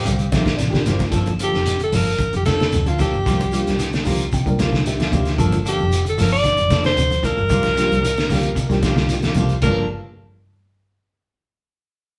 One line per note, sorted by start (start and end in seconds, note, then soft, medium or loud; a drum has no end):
0.00 0.57 G3 medium
0.00 0.58 C4 medium
0.00 0.57 G4 loud
0.05 0.19 C2 medium
0.05 0.26 D3 medium
0.05 0.31 F5 medium
0.05 closed hi-hat medium
0.05 high conga medium
0.05 shekere medium
0.19 closed hi-hat soft
0.19 shekere soft
0.32 0.57 A#1 medium
0.32 0.50 F3 medium
0.32 0.50 A#3 medium
0.32 0.50 C4 medium
0.32 0.50 G4 medium
0.32 0.57 E5 medium
0.32 kick medium
0.32 snare medium
0.32 closed hi-hat medium
0.32 high conga loud
0.32 shekere medium
0.45 kick medium
0.45 snare medium
0.45 closed hi-hat soft
0.45 shekere soft
0.56 0.83 A1 medium
0.56 0.80 C3 medium
0.56 1.08 D5 medium
0.56 snare soft
0.56 closed hi-hat medium
0.56 shekere medium
0.70 0.92 A#3 loud
0.70 0.92 D4 medium
0.70 0.92 F4 medium
0.70 0.92 G4 loud
0.70 kick medium
0.70 high conga medium
0.74 snare medium
0.74 shekere soft
0.86 1.10 G1 medium
0.86 1.07 E3 medium
0.86 1.03 F3 medium
0.86 1.03 A#3 medium
0.86 1.03 C4 medium
0.86 1.04 G4 medium
0.86 snare soft
0.86 closed hi-hat medium
0.86 low conga medium
0.86 shekere medium
0.99 kick medium
0.99 snare soft
0.99 closed hi-hat soft
0.99 low conga medium
0.99 shekere soft
1.10 1.36 G1 medium
1.10 1.29 F3 medium
1.10 1.34 F3 medium
1.10 1.66 A#3 medium
1.10 1.29 A#3 medium
1.10 1.66 D4 medium
1.10 1.66 F4 medium
1.10 1.66 A4 medium
1.10 kick medium
1.10 snare soft
1.10 closed hi-hat medium
1.10 shekere medium
1.14 1.30 A4 medium
1.14 muted clean electric guitar stroke medium
1.26 closed hi-hat soft
1.26 high conga medium
1.26 shekere soft
1.39 1.61 D3 medium
1.39 1.56 F3 medium
1.39 1.57 A#3 medium
1.39 1.79 G4 medium
1.39 1.57 A4 medium
1.39 closed hi-hat medium
1.39 shekere medium
1.53 1.88 F1 medium
1.53 snare soft
1.53 shekere soft
1.66 snare soft
1.66 closed hi-hat medium
1.66 shekere medium
1.80 1.90 D3 medium
1.80 1.97 A4 medium
1.80 closed hi-hat soft
1.80 shekere soft
1.92 2.28 G1 medium
1.92 2.09 F3 medium
1.92 2.14 F3 medium
1.92 2.09 A#3 medium
1.92 2.09 D4 medium
1.92 2.10 A4 medium
1.92 2.34 A#4 loud
1.92 open hi-hat medium
1.92 high conga medium
1.92 low conga medium
1.92 shekere medium
2.07 shekere soft
2.19 kick medium
2.19 closed hi-hat medium
2.19 high conga medium
2.19 shekere medium
2.33 2.68 F1 medium
2.33 2.54 D3 medium
2.33 2.45 G4 medium
2.33 closed hi-hat soft
2.33 shekere soft
2.45 2.62 F3 medium
2.45 2.62 A#3 medium
2.45 2.62 D4 medium
2.45 2.89 A4 loud
2.45 2.62 A4 medium
2.45 kick medium
2.45 snare medium
2.45 closed hi-hat soft
2.45 high conga medium
2.45 low conga medium
2.45 shekere medium
2.60 snare medium
2.60 closed hi-hat soft
2.60 shekere soft
2.72 3.13 D2 medium
2.72 2.83 C3 medium
2.72 closed hi-hat medium
2.72 shekere medium
2.86 2.97 D3 medium
2.86 2.97 A#3 soft
2.86 2.98 D4 soft
2.86 3.00 F4 medium
2.86 2.98 A4 soft
2.86 closed hi-hat soft
2.86 high conga medium
2.86 shekere soft
2.98 3.20 E3 medium
2.98 3.15 F3 medium
2.98 3.15 A#3 medium
2.98 3.15 D4 medium
2.98 4.03 G4 medium
2.98 3.15 A4 medium
2.98 kick medium
2.98 snare soft
2.98 closed hi-hat soft
2.98 high conga medium
2.98 low conga medium
2.98 shekere medium
3.13 3.25 G1 medium
3.13 shekere soft
3.25 3.50 C2 loud
3.25 3.42 F3 medium
3.25 3.48 F3 medium
3.25 3.42 A#3 medium
3.25 3.42 F4 medium
3.25 3.42 G4 medium
3.25 kick medium
3.25 snare soft
3.25 closed hi-hat medium
3.25 low conga medium
3.25 shekere medium
3.40 closed hi-hat soft
3.40 high conga medium
3.40 shekere soft
3.52 3.69 F3 medium
3.52 3.73 G3 medium
3.52 3.79 A#3 medium
3.52 3.79 D4 medium
3.52 3.69 F4 medium
3.52 3.80 F4 medium
3.52 3.69 G4 medium
3.52 3.80 G4 medium
3.52 muted clean electric guitar stroke medium
3.52 closed hi-hat medium
3.52 shekere medium
3.67 4.02 C2 medium
3.67 snare soft
3.67 closed hi-hat soft
3.67 high conga medium
3.67 shekere soft
3.79 4.00 E3 medium
3.79 snare soft
3.79 closed hi-hat medium
3.79 shekere medium
3.92 snare medium
3.92 closed hi-hat soft
3.92 shekere soft
4.04 4.29 C2 medium
4.04 4.27 D3 medium
4.04 4.22 F3 medium
4.04 4.25 A#3 medium
4.04 4.22 A#3 medium
4.04 4.26 D4 medium
4.04 4.26 F4 medium
4.04 4.22 F4 medium
4.04 4.26 G4 medium
4.04 4.22 G4 medium
4.04 4.30 A#5 medium
4.04 open hi-hat medium
4.04 high conga medium
4.04 low conga medium
4.04 shekere medium
4.19 closed hi-hat soft
4.19 shekere soft
4.32 4.45 C2 soft
4.32 4.54 C3 medium
4.32 4.58 G5 medium
4.32 kick medium
4.32 closed hi-hat medium
4.32 high conga medium
4.32 shekere medium
4.46 4.57 C2 loud
4.46 4.66 A#3 loud
4.46 4.67 D4 medium
4.46 4.67 F4 medium
4.46 4.67 A#4 loud
4.46 kick medium
4.46 closed hi-hat soft
4.46 shekere soft
4.59 4.75 F3 medium
4.59 4.75 A#3 medium
4.59 4.75 F4 medium
4.59 4.75 G4 medium
4.59 4.84 F5 medium
4.59 kick medium
4.59 snare medium
4.59 closed hi-hat medium
4.59 high conga medium
4.59 low conga medium
4.59 shekere medium
4.72 5.12 C2 medium
4.72 4.93 D3 medium
4.72 kick medium
4.72 snare medium
4.72 shekere soft
4.86 4.99 A#3 medium
4.86 5.00 D4 medium
4.86 5.00 F4 medium
4.86 5.00 G4 loud
4.86 5.36 E5 medium
4.86 snare soft
4.86 closed hi-hat medium
4.86 shekere medium
4.99 5.11 A#3 soft
4.99 5.12 F4 medium
4.99 5.12 G4 medium
4.99 snare medium
4.99 closed hi-hat soft
4.99 high conga medium
4.99 shekere soft
5.12 5.36 D2 medium
5.12 5.33 C3 medium
5.12 5.28 F3 medium
5.12 5.28 A#3 medium
5.12 5.26 A#3 medium
5.12 5.26 D4 medium
5.12 5.29 F4 medium
5.12 5.26 F4 medium
5.12 5.29 G4 medium
5.12 5.27 G4 medium
5.12 kick medium
5.12 closed hi-hat medium
5.12 high conga medium
5.12 low conga medium
5.12 shekere medium
5.25 snare soft
5.25 closed hi-hat soft
5.25 shekere soft
5.38 5.62 G1 loud
5.38 5.54 F3 medium
5.38 5.60 F3 medium
5.38 5.55 A#3 medium
5.38 5.93 A#3 medium
5.38 5.55 D4 medium
5.38 5.93 D4 medium
5.38 5.94 F4 medium
5.38 5.55 A4 medium
5.38 5.94 A4 loud
5.38 kick medium
5.38 closed hi-hat medium
5.38 low conga medium
5.38 shekere medium
5.52 closed hi-hat soft
5.52 high conga medium
5.52 shekere soft
5.64 5.86 D3 medium
5.64 5.81 F3 medium
5.64 5.81 A#3 medium
5.64 5.81 D4 medium
5.64 5.82 A4 medium
5.64 closed hi-hat medium
5.64 shekere medium
5.69 6.04 G4 loud
5.79 6.15 F1 medium
5.79 high conga medium
5.79 shekere soft
5.91 closed hi-hat medium
5.91 shekere medium
6.05 6.15 D3 medium
6.05 closed hi-hat soft
6.05 shekere soft
6.09 6.23 A4 medium
6.17 6.54 G1 loud
6.17 6.34 F3 medium
6.17 6.38 F3 medium
6.17 6.34 A#3 medium
6.17 6.35 D4 medium
6.17 6.35 A4 medium
6.17 6.32 A#4 medium
6.17 snare soft
6.17 open hi-hat medium
6.17 high conga medium
6.17 low conga medium
6.17 shekere medium
6.32 6.81 D5 loud
6.32 shekere soft
6.44 kick medium
6.44 snare soft
6.44 closed hi-hat medium
6.44 high conga medium
6.44 shekere medium
6.57 6.93 F1 medium
6.57 6.78 D3 medium
6.57 closed hi-hat soft
6.57 shekere soft
6.70 6.87 F3 medium
6.70 6.87 A#3 medium
6.70 6.87 D4 medium
6.70 6.88 A4 medium
6.70 kick medium
6.70 snare medium
6.70 closed hi-hat medium
6.70 high conga medium
6.70 low conga medium
6.70 shekere medium
6.84 7.27 C5 loud
6.84 snare medium
6.84 closed hi-hat soft
6.84 shekere soft
6.97 7.37 D2 medium
6.97 7.09 C3 medium
6.97 closed hi-hat medium
6.97 shekere loud
7.10 7.21 D3 medium
7.10 closed hi-hat soft
7.10 high conga medium
7.10 shekere soft
7.23 7.44 E3 medium
7.23 7.40 F3 medium
7.23 7.40 A#3 medium
7.23 7.40 D4 medium
7.23 7.41 A4 medium
7.23 9.11 A#4 loud
7.23 kick medium
7.23 closed hi-hat medium
7.23 low conga medium
7.23 shekere medium
7.37 7.49 G1 medium
7.37 shekere soft
7.49 7.74 C2 loud
7.49 7.67 A#3 medium
7.49 7.67 F4 medium
7.49 7.67 G4 medium
7.49 muted clean electric guitar stroke medium
7.49 kick loud
7.49 closed hi-hat medium
7.49 low conga medium
7.49 shekere medium
7.63 snare soft
7.63 closed hi-hat soft
7.63 high conga loud
7.63 shekere soft
7.77 7.94 F3 medium
7.77 7.98 G3 medium
7.77 8.04 A#3 medium
7.77 7.94 A#3 medium
7.77 8.05 D4 medium
7.77 7.94 F4 medium
7.77 8.05 F4 medium
7.77 8.05 G4 medium
7.77 snare soft
7.77 closed hi-hat medium
7.77 shekere medium
7.89 8.26 C2 medium
7.89 closed hi-hat soft
7.89 high conga medium
7.89 shekere soft
8.03 8.24 E3 medium
8.03 closed hi-hat medium
8.03 shekere medium
8.17 snare medium
8.17 closed hi-hat soft
8.17 shekere soft
8.29 8.54 C2 medium
8.29 8.50 D3 medium
8.29 8.47 F3 medium
8.29 8.51 A#3 medium
8.29 8.47 A#3 medium
8.29 8.51 D4 medium
8.29 8.51 F4 medium
8.29 8.47 F4 medium
8.29 8.52 G4 loud
8.29 8.47 G4 medium
8.29 snare soft
8.29 open hi-hat medium
8.29 high conga medium
8.29 low conga medium
8.29 shekere medium
8.43 closed hi-hat soft
8.43 shekere soft
8.55 8.69 C2 soft
8.55 8.77 C3 medium
8.55 kick medium
8.55 closed hi-hat medium
8.55 shekere medium
8.70 8.82 C2 loud
8.70 8.91 A#3 loud
8.70 8.91 D4 medium
8.70 8.91 F4 medium
8.70 8.92 G4 loud
8.70 kick medium
8.70 snare soft
8.70 closed hi-hat soft
8.70 shekere soft
8.83 8.97 F3 medium
8.83 8.97 A#3 medium
8.83 8.96 F4 medium
8.83 8.96 G4 medium
8.83 kick medium
8.83 snare medium
8.83 closed hi-hat soft
8.83 high conga loud
8.83 low conga medium
8.83 shekere medium
8.96 9.20 C2 medium
8.96 9.17 D3 medium
8.96 9.13 A#3 medium
8.96 9.13 F4 soft
8.96 9.13 G4 medium
8.96 kick medium
8.96 snare medium
8.96 shekere soft
9.09 9.25 A#3 medium
9.09 9.25 D4 medium
9.09 9.25 F4 medium
9.09 snare soft
9.09 closed hi-hat medium
9.09 shekere medium
9.14 9.26 G4 medium
9.22 9.37 A#3 soft
9.22 9.37 F4 soft
9.22 9.37 G4 medium
9.22 snare medium
9.22 closed hi-hat soft
9.22 high conga medium
9.22 shekere soft
9.34 9.60 C2 medium
9.34 9.57 C3 medium
9.34 9.53 F3 medium
9.34 9.51 A#3 medium
9.34 9.54 A#3 medium
9.34 9.51 D4 medium
9.34 9.54 F4 medium
9.34 9.51 F4 medium
9.34 kick medium
9.34 closed hi-hat medium
9.34 high conga medium
9.34 low conga medium
9.34 shekere medium
9.38 9.54 G4 medium
9.38 9.51 A4 medium
9.49 closed hi-hat soft
9.49 shekere soft
9.62 9.88 G1 medium
9.62 9.80 G2 medium
9.62 9.85 F3 medium
9.62 9.89 A#3 medium
9.62 9.85 A#3 medium
9.62 9.89 D4 medium
9.62 9.85 D4 medium
9.62 9.89 F4 medium
9.62 9.88 A4 medium
9.62 9.86 A4 medium
9.62 9.88 A#4 medium
9.62 kick medium
9.62 crash medium
9.62 low conga medium
9.62 shekere medium